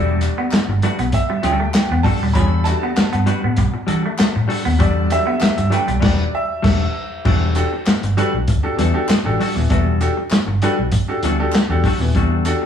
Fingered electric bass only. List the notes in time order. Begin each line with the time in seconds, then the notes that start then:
Already playing: E1
0.52 muted fingered electric bass stroke
0.68 G1
0.99 B1
1.44 D2
1.91 E2
2.21 D#1
2.36 E2
2.98 muted fingered electric bass stroke
3.14 G2
3.44 A2
3.58 B2
3.89 E3
4.20 muted fingered electric bass stroke
4.36 A2
4.66 D#2
4.80 E2
5.42 muted fingered electric bass stroke
5.58 G2
5.88 B1
6.03 E1
6.64 E1
7.26 E1
7.87 muted fingered electric bass stroke
8.03 G1
8.34 B1
8.48 D2
8.79 E2
9.09 muted fingered electric bass stroke
9.26 A1
9.56 D#1
9.71 E1
10.31 muted fingered electric bass stroke
10.47 G1
10.79 B1
11.23 D2
11.69 E2
12.00 D#1
12.15 E2